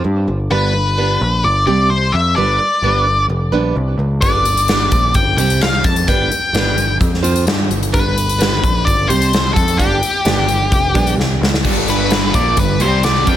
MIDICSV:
0, 0, Header, 1, 7, 480
1, 0, Start_track
1, 0, Tempo, 464037
1, 523, Time_signature, 4, 2, 24, 8
1, 13827, End_track
2, 0, Start_track
2, 0, Title_t, "Lead electric guitar"
2, 0, Program_c, 0, 29
2, 534, Note_on_c, 0, 71, 74
2, 1493, Note_on_c, 0, 74, 83
2, 1518, Note_off_c, 0, 71, 0
2, 1715, Note_off_c, 0, 74, 0
2, 1727, Note_on_c, 0, 74, 76
2, 1949, Note_off_c, 0, 74, 0
2, 1966, Note_on_c, 0, 72, 82
2, 2196, Note_on_c, 0, 76, 91
2, 2212, Note_off_c, 0, 72, 0
2, 2437, Note_off_c, 0, 76, 0
2, 2441, Note_on_c, 0, 74, 93
2, 3361, Note_off_c, 0, 74, 0
2, 4357, Note_on_c, 0, 74, 80
2, 5328, Note_on_c, 0, 79, 81
2, 5349, Note_off_c, 0, 74, 0
2, 5553, Note_off_c, 0, 79, 0
2, 5565, Note_on_c, 0, 79, 85
2, 5808, Note_on_c, 0, 77, 90
2, 5812, Note_off_c, 0, 79, 0
2, 6045, Note_on_c, 0, 81, 94
2, 6053, Note_off_c, 0, 77, 0
2, 6292, Note_off_c, 0, 81, 0
2, 6298, Note_on_c, 0, 79, 86
2, 7209, Note_off_c, 0, 79, 0
2, 8211, Note_on_c, 0, 71, 93
2, 9154, Note_on_c, 0, 74, 97
2, 9195, Note_off_c, 0, 71, 0
2, 9395, Note_on_c, 0, 72, 96
2, 9405, Note_off_c, 0, 74, 0
2, 9844, Note_off_c, 0, 72, 0
2, 9861, Note_on_c, 0, 69, 84
2, 10118, Note_on_c, 0, 67, 87
2, 10119, Note_off_c, 0, 69, 0
2, 11518, Note_off_c, 0, 67, 0
2, 12307, Note_on_c, 0, 71, 76
2, 12761, Note_off_c, 0, 71, 0
2, 12774, Note_on_c, 0, 74, 82
2, 13002, Note_off_c, 0, 74, 0
2, 13026, Note_on_c, 0, 71, 77
2, 13248, Note_off_c, 0, 71, 0
2, 13262, Note_on_c, 0, 72, 67
2, 13486, Note_off_c, 0, 72, 0
2, 13489, Note_on_c, 0, 74, 78
2, 13720, Note_off_c, 0, 74, 0
2, 13743, Note_on_c, 0, 79, 79
2, 13827, Note_off_c, 0, 79, 0
2, 13827, End_track
3, 0, Start_track
3, 0, Title_t, "Steel-string acoustic guitar"
3, 0, Program_c, 1, 25
3, 520, Note_on_c, 1, 55, 75
3, 524, Note_on_c, 1, 62, 75
3, 525, Note_on_c, 1, 59, 78
3, 532, Note_on_c, 1, 71, 82
3, 750, Note_off_c, 1, 71, 0
3, 754, Note_off_c, 1, 59, 0
3, 757, Note_off_c, 1, 62, 0
3, 762, Note_off_c, 1, 55, 0
3, 1008, Note_on_c, 1, 55, 76
3, 1012, Note_on_c, 1, 62, 77
3, 1016, Note_on_c, 1, 59, 74
3, 1019, Note_on_c, 1, 71, 85
3, 1238, Note_off_c, 1, 71, 0
3, 1242, Note_off_c, 1, 59, 0
3, 1246, Note_off_c, 1, 55, 0
3, 1248, Note_off_c, 1, 62, 0
3, 1724, Note_on_c, 1, 67, 81
3, 1729, Note_on_c, 1, 60, 79
3, 1734, Note_on_c, 1, 55, 75
3, 1737, Note_on_c, 1, 48, 71
3, 1956, Note_off_c, 1, 48, 0
3, 1960, Note_off_c, 1, 55, 0
3, 1960, Note_off_c, 1, 60, 0
3, 1964, Note_off_c, 1, 67, 0
3, 2445, Note_on_c, 1, 55, 78
3, 2453, Note_on_c, 1, 62, 75
3, 2455, Note_on_c, 1, 59, 77
3, 2461, Note_on_c, 1, 71, 87
3, 2675, Note_off_c, 1, 71, 0
3, 2682, Note_off_c, 1, 59, 0
3, 2685, Note_off_c, 1, 55, 0
3, 2685, Note_off_c, 1, 62, 0
3, 2927, Note_on_c, 1, 55, 67
3, 2933, Note_on_c, 1, 62, 82
3, 2935, Note_on_c, 1, 59, 84
3, 2939, Note_on_c, 1, 71, 82
3, 3158, Note_off_c, 1, 71, 0
3, 3161, Note_off_c, 1, 59, 0
3, 3163, Note_off_c, 1, 62, 0
3, 3166, Note_off_c, 1, 55, 0
3, 3642, Note_on_c, 1, 71, 82
3, 3650, Note_on_c, 1, 59, 75
3, 3654, Note_on_c, 1, 55, 63
3, 3654, Note_on_c, 1, 62, 68
3, 3876, Note_off_c, 1, 55, 0
3, 3878, Note_off_c, 1, 62, 0
3, 3883, Note_off_c, 1, 71, 0
3, 3884, Note_off_c, 1, 59, 0
3, 4360, Note_on_c, 1, 55, 68
3, 4364, Note_on_c, 1, 62, 73
3, 4367, Note_on_c, 1, 71, 78
3, 4368, Note_on_c, 1, 59, 71
3, 4593, Note_off_c, 1, 71, 0
3, 4596, Note_off_c, 1, 59, 0
3, 4601, Note_off_c, 1, 62, 0
3, 4602, Note_off_c, 1, 55, 0
3, 4843, Note_on_c, 1, 55, 78
3, 4847, Note_on_c, 1, 62, 77
3, 4851, Note_on_c, 1, 59, 89
3, 4854, Note_on_c, 1, 71, 84
3, 5075, Note_off_c, 1, 71, 0
3, 5078, Note_off_c, 1, 59, 0
3, 5084, Note_off_c, 1, 55, 0
3, 5086, Note_off_c, 1, 62, 0
3, 5566, Note_on_c, 1, 67, 78
3, 5571, Note_on_c, 1, 60, 75
3, 5573, Note_on_c, 1, 55, 72
3, 5577, Note_on_c, 1, 48, 77
3, 5792, Note_off_c, 1, 48, 0
3, 5793, Note_off_c, 1, 55, 0
3, 5798, Note_off_c, 1, 67, 0
3, 5800, Note_off_c, 1, 60, 0
3, 6287, Note_on_c, 1, 55, 74
3, 6289, Note_on_c, 1, 62, 75
3, 6292, Note_on_c, 1, 59, 79
3, 6298, Note_on_c, 1, 71, 75
3, 6515, Note_off_c, 1, 71, 0
3, 6520, Note_off_c, 1, 59, 0
3, 6521, Note_off_c, 1, 62, 0
3, 6526, Note_off_c, 1, 55, 0
3, 6764, Note_on_c, 1, 55, 69
3, 6765, Note_on_c, 1, 62, 85
3, 6775, Note_on_c, 1, 59, 80
3, 6777, Note_on_c, 1, 71, 88
3, 6988, Note_off_c, 1, 71, 0
3, 6993, Note_off_c, 1, 59, 0
3, 6996, Note_off_c, 1, 62, 0
3, 7004, Note_off_c, 1, 55, 0
3, 7474, Note_on_c, 1, 72, 91
3, 7478, Note_on_c, 1, 65, 82
3, 7483, Note_on_c, 1, 60, 72
3, 7489, Note_on_c, 1, 53, 76
3, 7714, Note_off_c, 1, 60, 0
3, 7718, Note_off_c, 1, 72, 0
3, 7719, Note_off_c, 1, 65, 0
3, 7726, Note_off_c, 1, 53, 0
3, 8194, Note_on_c, 1, 55, 71
3, 8198, Note_on_c, 1, 62, 83
3, 8200, Note_on_c, 1, 59, 78
3, 8206, Note_on_c, 1, 71, 88
3, 8428, Note_off_c, 1, 71, 0
3, 8431, Note_off_c, 1, 59, 0
3, 8433, Note_off_c, 1, 62, 0
3, 8438, Note_off_c, 1, 55, 0
3, 8673, Note_on_c, 1, 55, 87
3, 8679, Note_on_c, 1, 62, 80
3, 8683, Note_on_c, 1, 59, 89
3, 8687, Note_on_c, 1, 71, 93
3, 8912, Note_off_c, 1, 71, 0
3, 8917, Note_off_c, 1, 59, 0
3, 8918, Note_off_c, 1, 55, 0
3, 8918, Note_off_c, 1, 62, 0
3, 9405, Note_on_c, 1, 60, 77
3, 9405, Note_on_c, 1, 67, 85
3, 9410, Note_on_c, 1, 55, 73
3, 9414, Note_on_c, 1, 48, 78
3, 9634, Note_off_c, 1, 55, 0
3, 9635, Note_off_c, 1, 48, 0
3, 9639, Note_off_c, 1, 60, 0
3, 9640, Note_off_c, 1, 67, 0
3, 10121, Note_on_c, 1, 55, 74
3, 10128, Note_on_c, 1, 59, 81
3, 10130, Note_on_c, 1, 62, 83
3, 10132, Note_on_c, 1, 67, 83
3, 10349, Note_off_c, 1, 67, 0
3, 10355, Note_off_c, 1, 62, 0
3, 10356, Note_off_c, 1, 59, 0
3, 10361, Note_off_c, 1, 55, 0
3, 10598, Note_on_c, 1, 55, 74
3, 10601, Note_on_c, 1, 59, 84
3, 10606, Note_on_c, 1, 62, 79
3, 10609, Note_on_c, 1, 67, 100
3, 10823, Note_off_c, 1, 67, 0
3, 10824, Note_off_c, 1, 62, 0
3, 10829, Note_off_c, 1, 55, 0
3, 10831, Note_off_c, 1, 59, 0
3, 11319, Note_on_c, 1, 67, 84
3, 11324, Note_on_c, 1, 62, 76
3, 11330, Note_on_c, 1, 59, 87
3, 11333, Note_on_c, 1, 55, 69
3, 11548, Note_off_c, 1, 55, 0
3, 11551, Note_off_c, 1, 59, 0
3, 11555, Note_off_c, 1, 62, 0
3, 11557, Note_off_c, 1, 67, 0
3, 12044, Note_on_c, 1, 43, 77
3, 12050, Note_on_c, 1, 50, 77
3, 12057, Note_on_c, 1, 55, 87
3, 12268, Note_off_c, 1, 43, 0
3, 12271, Note_off_c, 1, 50, 0
3, 12275, Note_off_c, 1, 55, 0
3, 12290, Note_on_c, 1, 43, 57
3, 12292, Note_on_c, 1, 50, 63
3, 12502, Note_off_c, 1, 43, 0
3, 12503, Note_off_c, 1, 50, 0
3, 12520, Note_on_c, 1, 43, 64
3, 12523, Note_on_c, 1, 50, 71
3, 12737, Note_off_c, 1, 43, 0
3, 12739, Note_off_c, 1, 50, 0
3, 12757, Note_on_c, 1, 43, 56
3, 12762, Note_on_c, 1, 50, 69
3, 12976, Note_off_c, 1, 43, 0
3, 12978, Note_off_c, 1, 50, 0
3, 13003, Note_on_c, 1, 43, 65
3, 13006, Note_on_c, 1, 50, 77
3, 13219, Note_off_c, 1, 43, 0
3, 13221, Note_off_c, 1, 50, 0
3, 13240, Note_on_c, 1, 48, 78
3, 13249, Note_on_c, 1, 55, 85
3, 13257, Note_on_c, 1, 60, 83
3, 13468, Note_off_c, 1, 48, 0
3, 13472, Note_off_c, 1, 55, 0
3, 13476, Note_off_c, 1, 60, 0
3, 13485, Note_on_c, 1, 48, 59
3, 13488, Note_on_c, 1, 55, 71
3, 13701, Note_off_c, 1, 48, 0
3, 13702, Note_off_c, 1, 55, 0
3, 13722, Note_on_c, 1, 55, 72
3, 13729, Note_on_c, 1, 62, 78
3, 13737, Note_on_c, 1, 59, 89
3, 13827, Note_off_c, 1, 55, 0
3, 13827, Note_off_c, 1, 59, 0
3, 13827, Note_off_c, 1, 62, 0
3, 13827, End_track
4, 0, Start_track
4, 0, Title_t, "Distorted electric guitar"
4, 0, Program_c, 2, 30
4, 12751, Note_on_c, 2, 46, 92
4, 12760, Note_on_c, 2, 53, 87
4, 12766, Note_on_c, 2, 58, 86
4, 12990, Note_off_c, 2, 46, 0
4, 12994, Note_off_c, 2, 53, 0
4, 12998, Note_off_c, 2, 58, 0
4, 13716, Note_on_c, 2, 53, 82
4, 13723, Note_on_c, 2, 60, 80
4, 13730, Note_on_c, 2, 65, 85
4, 13827, Note_off_c, 2, 53, 0
4, 13827, Note_off_c, 2, 60, 0
4, 13827, Note_off_c, 2, 65, 0
4, 13827, End_track
5, 0, Start_track
5, 0, Title_t, "Picked electric bass"
5, 0, Program_c, 3, 34
5, 50, Note_on_c, 3, 43, 78
5, 270, Note_off_c, 3, 43, 0
5, 288, Note_on_c, 3, 31, 67
5, 509, Note_off_c, 3, 31, 0
5, 527, Note_on_c, 3, 31, 83
5, 1205, Note_off_c, 3, 31, 0
5, 1253, Note_on_c, 3, 34, 81
5, 1472, Note_off_c, 3, 34, 0
5, 1491, Note_on_c, 3, 31, 76
5, 1711, Note_off_c, 3, 31, 0
5, 1731, Note_on_c, 3, 36, 80
5, 2174, Note_off_c, 3, 36, 0
5, 2209, Note_on_c, 3, 41, 81
5, 2430, Note_off_c, 3, 41, 0
5, 2444, Note_on_c, 3, 31, 68
5, 2667, Note_off_c, 3, 31, 0
5, 2919, Note_on_c, 3, 31, 83
5, 3368, Note_off_c, 3, 31, 0
5, 3396, Note_on_c, 3, 29, 86
5, 3623, Note_off_c, 3, 29, 0
5, 3644, Note_on_c, 3, 34, 76
5, 3867, Note_off_c, 3, 34, 0
5, 3886, Note_on_c, 3, 36, 76
5, 4108, Note_off_c, 3, 36, 0
5, 4113, Note_on_c, 3, 37, 83
5, 4341, Note_off_c, 3, 37, 0
5, 4368, Note_on_c, 3, 31, 80
5, 5045, Note_off_c, 3, 31, 0
5, 5087, Note_on_c, 3, 34, 89
5, 5309, Note_off_c, 3, 34, 0
5, 5326, Note_on_c, 3, 31, 77
5, 5545, Note_off_c, 3, 31, 0
5, 5552, Note_on_c, 3, 36, 80
5, 6004, Note_off_c, 3, 36, 0
5, 6046, Note_on_c, 3, 41, 80
5, 6268, Note_off_c, 3, 41, 0
5, 6290, Note_on_c, 3, 31, 64
5, 6510, Note_off_c, 3, 31, 0
5, 6756, Note_on_c, 3, 31, 78
5, 7206, Note_off_c, 3, 31, 0
5, 7247, Note_on_c, 3, 41, 90
5, 7691, Note_off_c, 3, 41, 0
5, 7722, Note_on_c, 3, 43, 83
5, 7946, Note_off_c, 3, 43, 0
5, 7962, Note_on_c, 3, 31, 67
5, 8186, Note_off_c, 3, 31, 0
5, 8212, Note_on_c, 3, 31, 87
5, 8886, Note_off_c, 3, 31, 0
5, 8928, Note_on_c, 3, 34, 88
5, 9149, Note_off_c, 3, 34, 0
5, 9175, Note_on_c, 3, 31, 81
5, 9392, Note_off_c, 3, 31, 0
5, 9407, Note_on_c, 3, 36, 87
5, 9851, Note_off_c, 3, 36, 0
5, 9891, Note_on_c, 3, 41, 94
5, 10110, Note_off_c, 3, 41, 0
5, 10127, Note_on_c, 3, 31, 72
5, 10348, Note_off_c, 3, 31, 0
5, 10608, Note_on_c, 3, 31, 89
5, 11051, Note_off_c, 3, 31, 0
5, 11086, Note_on_c, 3, 29, 97
5, 11307, Note_off_c, 3, 29, 0
5, 11328, Note_on_c, 3, 34, 85
5, 11545, Note_off_c, 3, 34, 0
5, 11551, Note_on_c, 3, 36, 86
5, 11779, Note_off_c, 3, 36, 0
5, 11802, Note_on_c, 3, 37, 89
5, 12025, Note_off_c, 3, 37, 0
5, 12044, Note_on_c, 3, 31, 80
5, 12723, Note_off_c, 3, 31, 0
5, 12768, Note_on_c, 3, 34, 84
5, 12989, Note_off_c, 3, 34, 0
5, 13007, Note_on_c, 3, 31, 76
5, 13229, Note_off_c, 3, 31, 0
5, 13237, Note_on_c, 3, 36, 74
5, 13688, Note_off_c, 3, 36, 0
5, 13728, Note_on_c, 3, 41, 82
5, 13827, Note_off_c, 3, 41, 0
5, 13827, End_track
6, 0, Start_track
6, 0, Title_t, "Muted steel-string acoustic guitar strokes"
6, 40, Note_on_c, 9, 29, 43
6, 143, Note_off_c, 9, 29, 0
6, 285, Note_on_c, 9, 29, 41
6, 388, Note_off_c, 9, 29, 0
6, 762, Note_on_c, 9, 29, 47
6, 866, Note_off_c, 9, 29, 0
6, 1250, Note_on_c, 9, 29, 39
6, 1354, Note_off_c, 9, 29, 0
6, 1488, Note_on_c, 9, 29, 42
6, 1591, Note_off_c, 9, 29, 0
6, 1969, Note_on_c, 9, 29, 37
6, 2072, Note_off_c, 9, 29, 0
6, 2212, Note_on_c, 9, 29, 45
6, 2316, Note_off_c, 9, 29, 0
6, 2688, Note_on_c, 9, 29, 45
6, 2791, Note_off_c, 9, 29, 0
6, 3170, Note_on_c, 9, 29, 39
6, 3274, Note_off_c, 9, 29, 0
6, 3405, Note_on_c, 9, 29, 44
6, 3508, Note_off_c, 9, 29, 0
6, 3888, Note_on_c, 9, 29, 38
6, 3992, Note_off_c, 9, 29, 0
6, 4127, Note_on_c, 9, 29, 49
6, 4230, Note_off_c, 9, 29, 0
6, 4605, Note_on_c, 9, 29, 42
6, 4709, Note_off_c, 9, 29, 0
6, 5087, Note_on_c, 9, 29, 42
6, 5191, Note_off_c, 9, 29, 0
6, 5327, Note_on_c, 9, 29, 44
6, 5431, Note_off_c, 9, 29, 0
6, 5804, Note_on_c, 9, 29, 42
6, 5908, Note_off_c, 9, 29, 0
6, 6042, Note_on_c, 9, 29, 43
6, 6146, Note_off_c, 9, 29, 0
6, 6528, Note_on_c, 9, 29, 47
6, 6631, Note_off_c, 9, 29, 0
6, 7000, Note_on_c, 9, 29, 41
6, 7103, Note_off_c, 9, 29, 0
6, 7237, Note_on_c, 9, 29, 42
6, 7340, Note_off_c, 9, 29, 0
6, 7715, Note_on_c, 9, 29, 41
6, 7818, Note_off_c, 9, 29, 0
6, 7955, Note_on_c, 9, 29, 48
6, 8059, Note_off_c, 9, 29, 0
6, 8440, Note_on_c, 9, 29, 45
6, 8544, Note_off_c, 9, 29, 0
6, 8925, Note_on_c, 9, 29, 49
6, 9028, Note_off_c, 9, 29, 0
6, 9173, Note_on_c, 9, 29, 44
6, 9277, Note_off_c, 9, 29, 0
6, 9647, Note_on_c, 9, 29, 40
6, 9750, Note_off_c, 9, 29, 0
6, 9878, Note_on_c, 9, 29, 44
6, 9981, Note_off_c, 9, 29, 0
6, 10362, Note_on_c, 9, 29, 45
6, 10465, Note_off_c, 9, 29, 0
6, 10836, Note_on_c, 9, 29, 44
6, 10939, Note_off_c, 9, 29, 0
6, 11075, Note_on_c, 9, 29, 46
6, 11178, Note_off_c, 9, 29, 0
6, 11560, Note_on_c, 9, 29, 45
6, 11664, Note_off_c, 9, 29, 0
6, 11806, Note_on_c, 9, 29, 43
6, 11909, Note_off_c, 9, 29, 0
6, 13827, End_track
7, 0, Start_track
7, 0, Title_t, "Drums"
7, 4367, Note_on_c, 9, 42, 54
7, 4368, Note_on_c, 9, 36, 96
7, 4470, Note_off_c, 9, 42, 0
7, 4471, Note_off_c, 9, 36, 0
7, 4607, Note_on_c, 9, 42, 52
7, 4711, Note_off_c, 9, 42, 0
7, 4731, Note_on_c, 9, 42, 57
7, 4835, Note_off_c, 9, 42, 0
7, 4841, Note_on_c, 9, 42, 57
7, 4854, Note_on_c, 9, 38, 90
7, 4945, Note_off_c, 9, 42, 0
7, 4957, Note_off_c, 9, 38, 0
7, 5086, Note_on_c, 9, 42, 57
7, 5089, Note_on_c, 9, 36, 90
7, 5189, Note_off_c, 9, 42, 0
7, 5192, Note_off_c, 9, 36, 0
7, 5320, Note_on_c, 9, 42, 60
7, 5326, Note_on_c, 9, 36, 88
7, 5424, Note_off_c, 9, 42, 0
7, 5430, Note_off_c, 9, 36, 0
7, 5568, Note_on_c, 9, 42, 61
7, 5671, Note_off_c, 9, 42, 0
7, 5690, Note_on_c, 9, 42, 62
7, 5794, Note_off_c, 9, 42, 0
7, 5808, Note_on_c, 9, 42, 56
7, 5820, Note_on_c, 9, 38, 101
7, 5911, Note_off_c, 9, 42, 0
7, 5923, Note_off_c, 9, 38, 0
7, 6042, Note_on_c, 9, 42, 52
7, 6045, Note_on_c, 9, 36, 93
7, 6146, Note_off_c, 9, 42, 0
7, 6148, Note_off_c, 9, 36, 0
7, 6168, Note_on_c, 9, 42, 57
7, 6271, Note_off_c, 9, 42, 0
7, 6289, Note_on_c, 9, 36, 79
7, 6291, Note_on_c, 9, 42, 53
7, 6392, Note_off_c, 9, 36, 0
7, 6394, Note_off_c, 9, 42, 0
7, 6534, Note_on_c, 9, 42, 50
7, 6637, Note_off_c, 9, 42, 0
7, 6770, Note_on_c, 9, 42, 55
7, 6783, Note_on_c, 9, 38, 100
7, 6874, Note_off_c, 9, 42, 0
7, 6886, Note_off_c, 9, 38, 0
7, 7011, Note_on_c, 9, 42, 56
7, 7115, Note_off_c, 9, 42, 0
7, 7248, Note_on_c, 9, 36, 93
7, 7255, Note_on_c, 9, 42, 56
7, 7352, Note_off_c, 9, 36, 0
7, 7359, Note_off_c, 9, 42, 0
7, 7385, Note_on_c, 9, 38, 31
7, 7489, Note_off_c, 9, 38, 0
7, 7491, Note_on_c, 9, 42, 57
7, 7595, Note_off_c, 9, 42, 0
7, 7610, Note_on_c, 9, 42, 62
7, 7714, Note_off_c, 9, 42, 0
7, 7726, Note_on_c, 9, 42, 54
7, 7738, Note_on_c, 9, 38, 99
7, 7829, Note_off_c, 9, 42, 0
7, 7842, Note_off_c, 9, 38, 0
7, 7974, Note_on_c, 9, 42, 56
7, 8077, Note_off_c, 9, 42, 0
7, 8097, Note_on_c, 9, 42, 57
7, 8201, Note_off_c, 9, 42, 0
7, 8213, Note_on_c, 9, 36, 94
7, 8219, Note_on_c, 9, 42, 58
7, 8316, Note_off_c, 9, 36, 0
7, 8323, Note_off_c, 9, 42, 0
7, 8458, Note_on_c, 9, 42, 60
7, 8562, Note_off_c, 9, 42, 0
7, 8580, Note_on_c, 9, 42, 61
7, 8683, Note_off_c, 9, 42, 0
7, 8695, Note_on_c, 9, 42, 56
7, 8707, Note_on_c, 9, 38, 101
7, 8798, Note_off_c, 9, 42, 0
7, 8810, Note_off_c, 9, 38, 0
7, 8933, Note_on_c, 9, 36, 100
7, 8940, Note_on_c, 9, 42, 63
7, 9036, Note_off_c, 9, 36, 0
7, 9043, Note_off_c, 9, 42, 0
7, 9174, Note_on_c, 9, 36, 85
7, 9181, Note_on_c, 9, 42, 62
7, 9278, Note_off_c, 9, 36, 0
7, 9284, Note_off_c, 9, 42, 0
7, 9416, Note_on_c, 9, 42, 65
7, 9519, Note_off_c, 9, 42, 0
7, 9534, Note_on_c, 9, 42, 64
7, 9638, Note_off_c, 9, 42, 0
7, 9654, Note_on_c, 9, 42, 60
7, 9666, Note_on_c, 9, 38, 106
7, 9757, Note_off_c, 9, 42, 0
7, 9770, Note_off_c, 9, 38, 0
7, 9892, Note_on_c, 9, 36, 95
7, 9895, Note_on_c, 9, 42, 58
7, 9996, Note_off_c, 9, 36, 0
7, 9998, Note_off_c, 9, 42, 0
7, 10013, Note_on_c, 9, 42, 60
7, 10116, Note_off_c, 9, 42, 0
7, 10132, Note_on_c, 9, 36, 77
7, 10136, Note_on_c, 9, 42, 54
7, 10235, Note_off_c, 9, 36, 0
7, 10239, Note_off_c, 9, 42, 0
7, 10373, Note_on_c, 9, 42, 57
7, 10476, Note_off_c, 9, 42, 0
7, 10605, Note_on_c, 9, 42, 56
7, 10618, Note_on_c, 9, 38, 91
7, 10709, Note_off_c, 9, 42, 0
7, 10721, Note_off_c, 9, 38, 0
7, 10846, Note_on_c, 9, 42, 54
7, 10949, Note_off_c, 9, 42, 0
7, 11088, Note_on_c, 9, 36, 93
7, 11088, Note_on_c, 9, 42, 54
7, 11191, Note_off_c, 9, 36, 0
7, 11191, Note_off_c, 9, 42, 0
7, 11329, Note_on_c, 9, 36, 103
7, 11332, Note_on_c, 9, 42, 54
7, 11432, Note_off_c, 9, 36, 0
7, 11435, Note_off_c, 9, 42, 0
7, 11450, Note_on_c, 9, 42, 58
7, 11553, Note_off_c, 9, 42, 0
7, 11582, Note_on_c, 9, 38, 55
7, 11685, Note_off_c, 9, 38, 0
7, 11826, Note_on_c, 9, 38, 76
7, 11930, Note_off_c, 9, 38, 0
7, 11938, Note_on_c, 9, 38, 76
7, 12041, Note_off_c, 9, 38, 0
7, 12047, Note_on_c, 9, 36, 92
7, 12047, Note_on_c, 9, 49, 92
7, 12151, Note_off_c, 9, 36, 0
7, 12151, Note_off_c, 9, 49, 0
7, 12289, Note_on_c, 9, 42, 62
7, 12392, Note_off_c, 9, 42, 0
7, 12522, Note_on_c, 9, 42, 82
7, 12534, Note_on_c, 9, 38, 97
7, 12625, Note_off_c, 9, 42, 0
7, 12638, Note_off_c, 9, 38, 0
7, 12766, Note_on_c, 9, 36, 97
7, 12768, Note_on_c, 9, 42, 69
7, 12869, Note_off_c, 9, 36, 0
7, 12872, Note_off_c, 9, 42, 0
7, 13001, Note_on_c, 9, 42, 84
7, 13006, Note_on_c, 9, 36, 84
7, 13105, Note_off_c, 9, 42, 0
7, 13110, Note_off_c, 9, 36, 0
7, 13240, Note_on_c, 9, 42, 63
7, 13344, Note_off_c, 9, 42, 0
7, 13482, Note_on_c, 9, 42, 83
7, 13494, Note_on_c, 9, 38, 110
7, 13585, Note_off_c, 9, 42, 0
7, 13598, Note_off_c, 9, 38, 0
7, 13726, Note_on_c, 9, 42, 63
7, 13728, Note_on_c, 9, 36, 84
7, 13827, Note_off_c, 9, 36, 0
7, 13827, Note_off_c, 9, 42, 0
7, 13827, End_track
0, 0, End_of_file